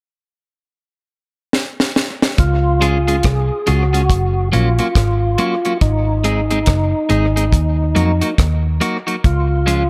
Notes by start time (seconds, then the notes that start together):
1.53 snare
1.80 snare
1.96 snare
2.22 snare
2.38 C#2 F4, kick, closed hi-hat
2.81 G#3 C#4 F4 G#4, closed hi-hat
3.08 G#3 C#4 F4 G#4, closed hi-hat
3.23 C2 G#4, kick, cross-stick, closed hi-hat
3.67 C#2 G#3 C#4 F4 F#4 G#4, closed hi-hat
3.93 G#3 C#4 F4 G#4, closed hi-hat
4.10 F#1, kick, closed hi-hat
4.52 A#1 F#3 A#3 C#4 F4 F#4, closed hi-hat
4.79 F#3 A#3 C#4 F#4, closed hi-hat
4.95 G#1, kick, cross-stick, closed hi-hat
5.38 F#3 A#3 C#4 F#4, closed hi-hat
5.65 F#3 A#3 C#4 F#4, closed hi-hat
5.81 G#1 D#4, kick, closed hi-hat
6.24 G#3 C4 D#4 G#4, closed hi-hat
6.51 G#3 C4 D#4 G#4, closed hi-hat
6.66 F#1, kick, cross-stick, closed hi-hat
7.09 G#1 G#3 C4 D#4 G#4, closed hi-hat
7.36 G#3 C4 D#4 G#4, closed hi-hat
7.53 D#2, kick, closed hi-hat
7.95 F2 F#3 A#3 D#4 F#4, closed hi-hat
8.21 F#3 A#3 D#4 F#4, closed hi-hat
8.38 D#2, kick, cross-stick, closed hi-hat
8.81 F#3 A#3 D#4 F#4, closed hi-hat
9.07 F#3 A#3 D#4 F#4, closed hi-hat
9.24 C#2 F4, kick, closed hi-hat
9.66 F3 G#3 C#4 F4, closed hi-hat